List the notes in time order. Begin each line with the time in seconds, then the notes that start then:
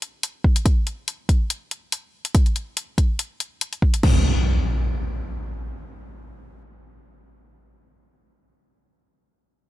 0.02 closed hi-hat
0.23 closed hi-hat
0.44 kick
0.56 closed hi-hat
0.66 kick, closed hi-hat
0.87 closed hi-hat
1.08 closed hi-hat
1.29 kick, closed hi-hat
1.50 closed hi-hat
1.71 closed hi-hat
1.92 closed hi-hat
2.25 closed hi-hat
2.35 kick, closed hi-hat
2.46 closed hi-hat
2.56 closed hi-hat
2.77 closed hi-hat
2.98 kick, closed hi-hat
3.19 closed hi-hat
3.40 closed hi-hat
3.61 closed hi-hat
3.73 closed hi-hat
3.82 kick
3.94 closed hi-hat
4.03 kick, crash, impact